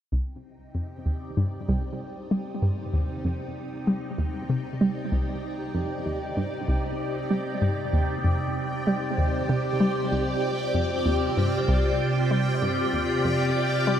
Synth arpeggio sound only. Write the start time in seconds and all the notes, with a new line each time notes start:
0.12 C2
0.75 F2
1.06 D#2
1.37 G2
1.69 C2
2.31 G3
2.62 G2
2.93 D#2
3.25 F2
3.87 G3
4.18 D#2
4.50 C3
4.81 G3
5.12 C2
5.75 F2
6.06 D#2
6.37 G2
6.68 C2
7.31 G3
7.62 G2
7.93 D#2
8.24 F2
8.87 G3
9.18 D#2
9.49 C3
9.80 G3
10.12 C2
10.74 F2
11.06 D#2
11.37 G2
11.68 C2
12.31 G3
12.62 G2
12.93 D#2
13.25 F2
13.87 G3